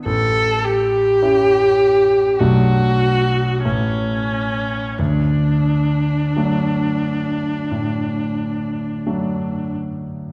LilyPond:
<<
  \new Staff \with { instrumentName = "Viola" } { \time 4/4 \key d \major \tempo 4 = 45 a'8 g'4. fis'4 cis'4 | d'2.~ d'8 r8 | }
  \new Staff \with { instrumentName = "Grand piano" } { \time 4/4 \key d \major a,,4 <cis' e'>4 <b,, fis a d'>4 <a,, a e'>4 | d,4 <fis a d'>4 a,4 <fis a d'>4 | }
>>